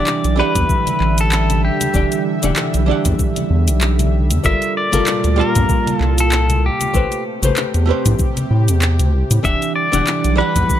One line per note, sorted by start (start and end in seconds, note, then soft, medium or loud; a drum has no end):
0.00 4.41 D3 medium
0.00 0.34 E3 medium
0.00 4.41 G3 medium
0.00 0.35 D4 medium
0.00 0.35 G4 medium
0.00 0.41 D5 loud
0.00 4.41 E5 medium
0.00 0.35 F#5 medium
0.07 clap loud
0.07 cabasa medium
0.24 0.43 B1 medium
0.24 closed hi-hat soft
0.24 cabasa soft
0.36 1.90 E3 medium
0.36 1.91 D4 medium
0.36 1.92 G4 medium
0.36 1.21 B4 medium
0.40 1.92 F#5 loud
0.55 0.64 E2 loud
0.55 kick medium
0.55 closed hi-hat medium
0.55 low conga medium
0.55 cabasa medium
0.69 kick loud
0.69 cabasa medium
0.87 closed hi-hat soft
0.87 high conga medium
0.87 cabasa soft
1.00 1.70 A1 medium
1.00 clap soft
1.18 1.61 A4 loud
1.18 closed hi-hat medium
1.18 cabasa medium
1.32 clap loud
1.32 cabasa medium
1.50 closed hi-hat soft
1.50 high conga medium
1.50 cabasa soft
1.65 2.22 G4 medium
1.81 closed hi-hat medium
1.81 high conga medium
1.81 cabasa medium
1.94 2.06 E1 loud
1.94 2.39 E3 medium
1.94 2.39 D4 medium
1.94 2.40 G4 medium
1.94 2.40 G5 medium
1.94 kick loud
1.94 cabasa medium
2.12 closed hi-hat soft
2.12 cabasa soft
2.42 2.52 E1 medium
2.42 2.84 E3 medium
2.42 2.85 D4 medium
2.42 2.85 G4 medium
2.42 2.86 F#5 medium
2.42 closed hi-hat medium
2.42 high conga medium
2.42 cabasa medium
2.56 clap loud
2.56 cabasa medium
2.74 2.93 B1 medium
2.74 closed hi-hat soft
2.74 cabasa soft
2.86 4.40 E3 medium
2.86 4.41 D4 medium
2.86 4.42 G4 medium
2.91 4.43 F#5 medium
3.05 3.14 E2 loud
3.05 kick medium
3.05 closed hi-hat medium
3.05 low conga medium
3.05 cabasa medium
3.19 kick loud
3.19 cabasa medium
3.36 closed hi-hat soft
3.36 high conga medium
3.36 cabasa soft
3.50 3.70 E2 loud
3.68 4.32 B1 medium
3.68 closed hi-hat medium
3.68 cabasa medium
3.81 clap loud
3.81 cabasa medium
3.99 closed hi-hat soft
3.99 high conga medium
3.99 cabasa soft
4.31 4.39 E2 medium
4.31 closed hi-hat medium
4.31 high conga medium
4.31 cabasa medium
4.43 4.55 G1 loud
4.43 6.92 A#2 medium
4.43 4.89 G3 medium
4.43 6.92 F4 medium
4.43 4.89 F4 medium
4.43 4.89 A4 medium
4.43 4.90 A#4 medium
4.43 4.77 E5 loud
4.43 kick loud
4.43 cabasa medium
4.62 closed hi-hat soft
4.62 cabasa soft
4.77 5.41 D5 loud
4.92 5.02 G1 medium
4.92 5.34 G3 medium
4.92 5.35 F4 medium
4.92 5.35 A4 medium
4.92 5.36 A#4 medium
4.92 closed hi-hat medium
4.92 high conga medium
4.92 cabasa medium
5.07 clap loud
5.07 cabasa medium
5.24 5.42 D2 medium
5.24 closed hi-hat soft
5.24 cabasa soft
5.36 6.90 G3 loud
5.36 6.91 F4 medium
5.36 6.92 A5 medium
5.40 6.93 A#3 loud
5.40 5.96 A#4 medium
5.55 5.65 G2 loud
5.55 kick medium
5.55 closed hi-hat soft
5.55 low conga medium
5.55 cabasa medium
5.69 kick loud
5.69 cabasa medium
5.87 closed hi-hat soft
5.87 high conga medium
5.87 cabasa soft
5.96 6.20 A4 medium
6.00 6.70 C2 medium
6.00 clap soft
6.18 6.66 A4 loud
6.18 closed hi-hat medium
6.18 cabasa medium
6.32 clap loud
6.32 cabasa medium
6.50 closed hi-hat soft
6.50 high conga medium
6.50 cabasa soft
6.66 7.23 G4 medium
6.81 closed hi-hat medium
6.81 high conga medium
6.81 cabasa medium
6.94 7.05 A1 medium
6.94 9.42 C3 medium
6.94 7.39 A3 medium
6.94 9.42 G4 medium
6.94 7.39 G4 medium
6.94 7.40 B4 medium
6.94 7.40 C5 medium
6.94 kick loud
6.94 cabasa medium
7.12 closed hi-hat soft
7.12 cabasa soft
7.42 7.51 A1 medium
7.42 7.85 A3 medium
7.42 7.85 G4 medium
7.42 7.85 B4 medium
7.42 7.86 C5 medium
7.42 closed hi-hat soft
7.42 high conga medium
7.42 cabasa medium
7.57 clap medium
7.57 cabasa medium
7.74 7.93 E2 medium
7.74 closed hi-hat soft
7.74 cabasa soft
7.86 9.40 A3 medium
7.86 9.41 G4 medium
7.86 9.41 B4 medium
7.90 9.42 C5 medium
8.06 8.14 A2 loud
8.06 kick medium
8.06 closed hi-hat medium
8.06 low conga medium
8.06 cabasa medium
8.19 kick loud
8.19 cabasa medium
8.37 closed hi-hat soft
8.37 high conga medium
8.37 cabasa soft
8.51 8.70 A2 loud
8.68 8.99 E2 medium
8.68 closed hi-hat medium
8.68 cabasa medium
8.82 clap medium
8.82 cabasa medium
8.99 9.15 D2 medium
8.99 closed hi-hat soft
8.99 high conga medium
8.99 cabasa soft
9.13 9.24 C2 medium
9.31 9.39 A2 medium
9.31 closed hi-hat medium
9.31 high conga medium
9.31 cabasa medium
9.43 9.56 E1 loud
9.43 10.80 D3 medium
9.43 9.88 E3 medium
9.43 10.80 G3 medium
9.43 9.89 D4 medium
9.43 9.89 G4 medium
9.43 9.75 E5 loud
9.43 10.80 F#5 medium
9.43 9.89 F#5 medium
9.43 kick loud
9.43 cabasa medium
9.62 closed hi-hat soft
9.62 cabasa soft
9.76 10.34 D5 loud
9.92 10.02 E1 medium
9.92 10.34 E3 medium
9.92 10.35 D4 medium
9.92 10.35 G4 medium
9.92 10.35 F#5 medium
9.92 closed hi-hat medium
9.92 high conga medium
9.92 cabasa medium
10.07 clap medium
10.07 cabasa medium
10.24 10.43 B1 medium
10.24 closed hi-hat soft
10.24 cabasa soft
10.36 10.80 E3 loud
10.36 10.80 D4 medium
10.36 10.80 G4 medium
10.36 10.80 B4 loud
10.40 10.80 F#5 loud
10.56 10.64 E2 loud
10.56 kick medium
10.56 closed hi-hat soft
10.56 low conga medium
10.56 cabasa medium
10.70 kick loud
10.70 cabasa medium